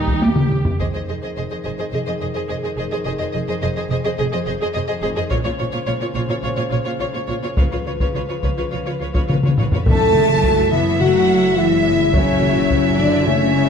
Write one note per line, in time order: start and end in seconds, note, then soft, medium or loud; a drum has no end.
0.00 0.56 D#2 medium
0.00 0.19 G3 medium
0.00 0.23 G3 medium
0.00 0.22 D#4 medium
0.00 0.19 G4 medium
0.00 0.22 G4 medium
0.08 taiko medium
0.22 0.80 G4 medium
0.22 taiko high medium
0.36 taiko mid medium
0.51 taiko mid medium
0.65 taiko low medium
0.79 0.86 F1 soft
0.79 0.86 F2 soft
0.79 5.28 D#3 soft
0.79 0.86 G#4 soft
0.79 5.28 G#4 soft
0.79 0.86 C5 soft
0.79 0.86 D#5 soft
0.79 taiko soft
0.94 1.00 F2 soft
0.94 1.00 G#4 soft
0.94 0.99 C5 soft
0.94 1.00 D#5 soft
1.08 1.14 F1 soft
1.08 1.14 F2 soft
1.08 1.14 G#4 soft
1.08 1.14 C5 soft
1.08 1.15 D#5 soft
1.22 1.28 F2 soft
1.22 1.28 G#4 soft
1.22 1.28 C5 soft
1.22 1.29 D#5 soft
1.36 1.43 F1 soft
1.36 1.42 F2 soft
1.36 1.42 G#4 soft
1.36 1.42 C5 soft
1.36 1.43 D#5 soft
1.50 1.56 F2 soft
1.50 1.57 G#4 soft
1.50 1.56 C5 soft
1.50 1.57 D#5 soft
1.64 1.71 F1 soft
1.64 1.70 F2 soft
1.64 1.70 G#4 soft
1.64 1.70 C5 soft
1.64 1.70 D#5 soft
1.78 1.84 F2 soft
1.78 1.85 G#4 soft
1.78 1.84 C5 soft
1.78 1.85 D#5 soft
1.92 1.99 F1 soft
1.92 1.99 F2 soft
1.92 1.99 G#4 soft
1.92 1.98 C5 soft
1.92 2.00 D#5 medium
2.06 2.13 F2 soft
2.06 2.14 G#4 soft
2.06 2.12 C5 soft
2.06 2.13 D#5 soft
2.21 2.27 F1 soft
2.21 2.27 F2 soft
2.21 2.27 G#4 soft
2.21 2.26 C5 soft
2.21 2.27 D#5 soft
2.35 2.41 F2 soft
2.35 2.41 G#4 medium
2.35 2.40 C5 soft
2.35 2.41 D#5 medium
2.49 2.55 F1 soft
2.49 2.55 F2 soft
2.49 2.54 G#4 soft
2.49 2.55 C5 soft
2.49 2.56 D#5 soft
2.63 2.69 F2 soft
2.63 2.69 G#4 soft
2.63 2.70 C5 soft
2.63 2.70 D#5 soft
2.77 2.84 F1 medium
2.77 2.83 F2 medium
2.77 2.83 G#4 soft
2.77 2.84 C5 medium
2.77 2.84 D#5 soft
2.91 2.98 F2 soft
2.91 2.97 G#4 soft
2.91 2.99 C5 soft
2.91 2.97 D#5 soft
3.05 3.12 F1 medium
3.05 3.12 F2 medium
3.05 3.12 G#4 soft
3.05 3.12 C5 medium
3.05 3.11 D#5 soft
3.19 3.25 F2 soft
3.19 3.26 G#4 soft
3.19 3.27 C5 soft
3.19 3.25 D#5 soft
3.33 3.40 F1 soft
3.33 3.40 F2 soft
3.33 3.40 G#4 soft
3.33 3.40 C5 soft
3.33 3.39 D#5 soft
3.48 3.54 F2 medium
3.48 3.54 G#4 medium
3.48 3.54 C5 medium
3.48 3.54 D#5 medium
3.62 3.69 F1 soft
3.62 3.68 F2 soft
3.62 3.68 G#4 soft
3.62 3.69 C5 soft
3.62 3.68 D#5 soft
3.76 3.82 F2 soft
3.76 3.82 G#4 soft
3.76 3.83 C5 soft
3.76 3.83 D#5 soft
3.90 3.96 F1 medium
3.90 3.96 F2 medium
3.90 3.96 G#4 medium
3.90 3.97 C5 medium
3.90 3.96 D#5 medium
4.04 4.10 F2 soft
4.04 4.11 G#4 medium
4.04 4.11 C5 soft
4.04 4.10 D#5 soft
4.18 4.25 F1 medium
4.18 4.25 F2 medium
4.18 4.25 G#4 medium
4.18 4.25 C5 medium
4.18 4.24 D#5 medium
4.32 4.39 F2 soft
4.32 4.38 G#4 soft
4.32 4.39 C5 medium
4.32 4.38 D#5 soft
4.46 4.53 F1 soft
4.46 4.53 F2 soft
4.46 4.52 G#4 medium
4.46 4.54 C5 soft
4.46 4.52 D#5 soft
4.60 4.67 F2 medium
4.60 4.66 G#4 medium
4.60 4.68 C5 medium
4.60 4.67 D#5 medium
4.74 4.81 F1 soft
4.74 4.81 F2 soft
4.74 4.80 G#4 medium
4.74 4.82 C5 soft
4.74 4.80 D#5 medium
4.88 4.96 F2 medium
4.88 4.94 G#4 medium
4.88 4.95 C5 soft
4.88 4.94 D#5 soft
5.02 5.09 F1 medium
5.02 5.10 F2 medium
5.02 5.08 G#4 medium
5.02 5.09 C5 medium
5.02 5.08 D#5 medium
5.16 5.23 F2 soft
5.16 5.22 G#4 medium
5.16 5.23 C5 soft
5.16 5.23 D#5 soft
5.30 5.37 A#1 medium
5.30 5.37 A#2 medium
5.30 7.53 C#3 medium
5.30 5.36 F4 medium
5.30 7.54 C5 medium
5.30 5.36 C#5 medium
5.30 5.37 C#5 medium
5.30 taiko medium
5.44 5.51 A#2 soft
5.44 5.50 F4 soft
5.44 5.50 C#5 soft
5.44 5.51 C#5 soft
5.59 5.65 A#1 soft
5.59 5.65 A#2 medium
5.59 5.65 F4 soft
5.59 5.65 C#5 soft
5.59 5.66 C#5 soft
5.72 5.79 A#2 medium
5.72 5.79 F4 medium
5.72 5.78 C#5 medium
5.86 5.93 A#1 soft
5.86 5.93 A#2 medium
5.86 5.93 F4 soft
5.86 5.92 C#5 medium
5.86 5.93 C#5 soft
6.01 6.07 A#2 soft
6.01 6.07 F4 soft
6.01 6.07 C#5 soft
6.15 6.21 A#1 medium
6.15 6.21 A#2 medium
6.15 6.21 F4 medium
6.15 6.21 C#5 medium
6.29 6.35 A#2 soft
6.29 6.35 F4 soft
6.29 6.36 C#5 soft
6.43 6.50 A#1 medium
6.43 6.49 A#2 medium
6.43 6.49 F4 medium
6.43 6.49 C#5 medium
6.43 6.50 C#5 medium
6.57 6.63 A#2 soft
6.57 6.63 F4 medium
6.57 6.63 C#5 soft
6.57 6.64 C#5 soft
6.70 6.77 A#1 soft
6.70 6.78 A#2 soft
6.70 6.76 F4 soft
6.70 6.77 C#5 soft
6.85 6.92 A#2 medium
6.85 6.91 F4 medium
6.85 6.91 C#5 medium
6.85 6.92 C#5 medium
7.00 7.05 A#1 soft
7.00 7.06 A#2 soft
7.00 7.05 F4 soft
7.00 7.06 C#5 soft
7.00 7.07 C#5 soft
7.13 7.20 A#2 soft
7.13 7.19 F4 soft
7.13 7.20 C#5 soft
7.13 7.21 C#5 soft
7.28 7.34 A#1 soft
7.28 7.34 A#2 medium
7.28 7.34 F4 medium
7.28 7.34 C#5 soft
7.28 7.35 C#5 soft
7.43 7.49 A#2 soft
7.43 7.49 F4 soft
7.43 7.49 C#5 soft
7.57 7.63 C#2 soft
7.57 7.63 C#3 soft
7.57 9.55 F3 soft
7.57 7.63 F4 soft
7.57 9.55 B4 soft
7.57 7.64 B4 soft
7.57 7.64 C#5 soft
7.57 taiko medium
7.72 7.78 C#3 soft
7.72 7.78 F4 soft
7.72 7.78 B4 soft
7.72 7.78 C#5 soft
7.86 7.92 C#2 soft
7.86 7.92 C#3 soft
7.86 7.92 F4 soft
7.86 7.92 B4 soft
7.86 7.92 C#5 soft
8.00 8.07 C#3 soft
8.00 8.07 F4 soft
8.00 8.07 B4 soft
8.00 8.06 C#5 soft
8.00 taiko medium
8.15 8.20 C#2 soft
8.15 8.21 C#3 soft
8.15 8.21 F4 soft
8.15 8.22 B4 soft
8.15 8.21 C#5 soft
8.29 8.35 C#3 soft
8.29 8.35 F4 soft
8.29 8.36 B4 soft
8.29 8.35 C#5 soft
8.43 8.49 C#2 soft
8.43 8.50 C#3 soft
8.43 8.49 F4 soft
8.43 8.50 B4 soft
8.43 8.49 C#5 soft
8.43 taiko medium
8.57 8.65 C#3 soft
8.57 8.63 F4 soft
8.57 8.64 B4 soft
8.57 8.64 C#5 soft
8.71 8.78 C#2 soft
8.71 8.79 C#3 soft
8.71 8.77 F4 soft
8.71 8.79 B4 soft
8.71 8.78 C#5 soft
8.85 8.93 C#3 soft
8.85 8.91 F4 soft
8.85 8.94 B4 soft
8.85 8.92 C#5 soft
9.00 9.07 C#2 soft
9.00 9.07 C#3 soft
9.00 9.06 F4 soft
9.00 9.09 B4 soft
9.00 9.07 C#5 soft
9.14 9.22 C#3 soft
9.14 9.20 F4 soft
9.14 9.23 B4 soft
9.14 9.20 C#5 soft
9.14 taiko medium
9.28 9.36 C#2 soft
9.28 9.36 C#3 soft
9.28 9.34 F4 soft
9.28 9.35 C#5 soft
9.28 taiko mid medium
9.32 9.38 B4 soft
9.43 9.51 C#3 soft
9.43 9.49 F4 soft
9.43 9.52 B4 soft
9.43 9.51 C#5 soft
9.43 taiko mid medium
9.57 9.65 C#2 soft
9.57 9.65 C#3 soft
9.57 9.63 F4 soft
9.57 9.66 B4 medium
9.57 9.64 C#5 soft
9.57 taiko low-mid medium
9.72 9.79 C#3 soft
9.72 9.78 F4 soft
9.72 9.80 B4 soft
9.72 9.79 C#5 soft
9.72 taiko low medium
9.86 13.69 F#1 medium
9.86 10.69 F#2 medium
9.86 13.69 F#3 medium
9.86 10.13 A3 medium
9.86 10.69 A3 medium
9.86 13.69 E4 medium
9.86 10.69 A4 medium
9.86 13.69 E5 medium
9.86 10.70 A5 medium
9.86 taiko medium
10.14 10.43 G#3 medium
10.14 taiko mid medium
10.29 taiko mid medium
10.43 10.72 F#3 medium
10.43 taiko medium
10.72 11.02 E3 medium
10.72 11.00 B3 medium
10.72 11.01 E4 medium
10.72 11.02 E5 medium
10.72 taiko mid soft
11.00 11.58 F#3 medium
11.00 11.57 A3 medium
11.00 11.56 F#4 medium
11.00 11.58 F#5 medium
11.00 taiko mid medium
11.57 12.13 E3 medium
11.57 12.14 G#3 medium
11.57 12.14 E4 medium
11.57 12.14 E5 medium
12.13 12.97 C#3 medium
12.13 13.24 F#3 medium
12.13 12.99 C#4 medium
12.13 12.98 C#5 medium
12.13 taiko medium
12.42 taiko mid medium
12.57 taiko mid soft
12.70 taiko medium
12.98 13.27 D3 medium
12.98 13.27 D4 medium
12.98 13.27 D5 medium
12.98 taiko mid soft
13.26 13.69 C#3 medium
13.26 13.55 A3 medium
13.26 13.69 C#4 medium
13.26 13.69 C#5 medium
13.26 taiko mid soft
13.55 13.69 G#3 medium